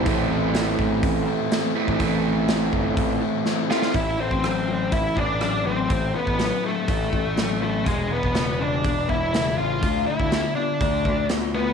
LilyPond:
<<
  \new Staff \with { instrumentName = "Lead electric guitar" } { \time 4/4 \key a \minor \tempo 4 = 122 r1 | r2. r8 f'8 | \key e \phrygian e'8 c'4. e'8 d'8 d'8 c'8~ | c'8 b4 a2 a8 |
gis8 b4 d'4 e'4 f'8~ | f'8 e'4 d'4. r8 b8 | }
  \new Staff \with { instrumentName = "Overdriven electric guitar" } { \clef bass \time 4/4 \key a \minor <a, e a c' e'>8 <a c' e'>8 <a, e a c' e'>4. <a c' e'>8 <e a c' e'>8 <a c' e'>8 | <a, e a c' e'>8 <a c' e'>8 <a, e a c' e'>4. <a c' e'>8 <e a c' e'>8 <a c' e'>8 | \key e \phrygian <a, e>8 <a, e>8 <a, fis>8 <a, fis>8 <a, e>8 <a, e>8 <a, fis>8 <a, fis>8 | <a, e>8 <a, e>8 <a, fis>8 <a, fis>8 <a, e>8 <a, e>8 <a, fis>8 <a, fis>8 |
<e, b,>8 <e, b,>8 <e, cis>8 <e, cis>8 <e, b,>8 <e, b,>8 <e, cis>8 <e, cis>8 | <d a>8 <d a>8 <d b>8 <d b>8 <d a>8 <d a>8 <d b>8 <d b>8 | }
  \new Staff \with { instrumentName = "Overdriven electric guitar" } { \clef bass \time 4/4 \key a \minor <a, e a>2.~ <a, e a>8 <a, e a>8 | <a, e a>2.~ <a, e a>8 <a, e a>8 | \key e \phrygian r1 | r1 |
r1 | r1 | }
  \new Staff \with { instrumentName = "Picked electric bass" } { \clef bass \time 4/4 \key a \minor a,,4. a,,8 a,,8 r4 r16 a,,16 | a,,4. g,,8 a,,8 r4. | \key e \phrygian a,,8. a,,4~ a,,16 a,,8 a,,4 a,,8 | a,,8 r16 a,,8 r8. a,,8 a,,4. |
e,,8. e,,4~ e,,16 e,,8 e,,4 a,,8 | d,8 r16 d,8 r8. d,8 d,4. | }
  \new DrumStaff \with { instrumentName = "Drums" } \drummode { \time 4/4 <hho bd>4 <hho sn>8 bd8 <hho bd>4 <hho sn>8. bd16 | <hho bd>4 <hho sn>8 bd8 <hho bd>4 sn8 sn16 sn16 | <hho bd>8. bd16 <hho ss>4 <hho bd>8 bd8 <hho ss>4 | <hho bd>8. bd16 <hho sn>4 <hho bd>8 bd8 <hho sn>4 |
<hho bd>8. bd16 <hho sn>4 <hho bd>8 bd8 <hho sn>4 | <hho bd>8. bd16 <hho sn>4 <hho bd>8 bd8 <hho sn>4 | }
>>